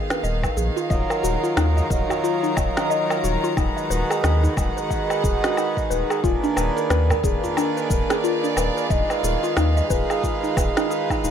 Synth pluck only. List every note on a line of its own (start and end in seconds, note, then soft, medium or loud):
0.10 0.22 B4 medium
0.24 0.42 D#5 medium
0.43 0.56 B4 medium
0.57 0.75 G#4 medium
0.77 0.89 F4 medium
0.90 1.08 D#5 loud
1.10 1.22 A#4 medium
1.23 1.41 F#4 medium
1.44 1.56 F4 medium
1.57 1.68 D#4 medium
1.77 1.89 D#5 medium
1.90 2.09 A#4 medium
2.10 2.23 F#4 medium
2.24 2.42 F4 medium
2.43 2.56 D#4 medium
2.57 2.76 D#5 medium
2.77 2.89 A#4 medium
2.90 3.08 D#5 loud
3.10 3.22 A#4 medium
3.24 3.42 F#4 medium
3.44 3.56 F4 medium
3.57 3.68 D#4 medium
3.77 3.89 D#5 medium
3.90 4.09 B4 medium
4.10 4.23 G#4 medium
4.24 4.41 F#4 medium
4.43 4.56 D#4 medium
4.57 4.76 D#5 medium
4.77 4.89 B4 medium
4.91 5.08 D#5 loud
5.10 5.22 B4 medium
5.24 5.42 G#4 medium
5.44 5.56 F#4 medium
5.57 5.69 D#4 medium
5.77 5.89 D#5 medium
5.90 6.09 B4 medium
6.10 6.23 G#4 medium
6.24 6.42 F4 medium
6.44 6.56 D4 medium
6.57 6.76 B4 medium
6.77 6.89 A#4 medium
6.90 7.08 B4 medium
7.10 7.22 A#4 medium
7.24 7.41 G#4 medium
7.44 7.56 F4 medium
7.57 7.68 D4 medium
7.77 7.89 B4 medium
7.91 8.09 A#4 medium
8.10 8.23 G#4 medium
8.24 8.42 F4 medium
8.44 8.56 D4 medium
8.57 8.76 B4 medium
8.77 8.89 A#4 medium
8.91 9.08 D#5 loud
9.10 9.22 B4 medium
9.24 9.42 G#4 medium
9.43 9.56 F4 medium
9.57 9.68 D#4 medium
9.77 9.89 D#5 medium
9.90 10.09 B4 medium
10.10 10.23 G#4 medium
10.24 10.42 F4 medium
10.43 10.56 D#4 medium
10.57 10.76 B4 medium
10.77 10.90 D#4 medium
10.90 11.09 G#4 loud
11.10 11.23 D#4 medium
11.24 11.31 D#4 medium